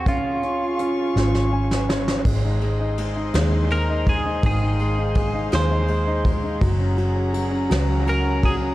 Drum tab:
CC |------------|x-----------|------------|------------|
RD |------------|--x-x-x-x-x-|x-x-x-x-x-x-|x-x-x-x-x-x-|
HH |x-x-x-------|------------|------------|------------|
SD |------oo-ooo|------o-----|------o-----|------o-----|
BD |o-----------|o---------o-|o---o-----o-|o---------o-|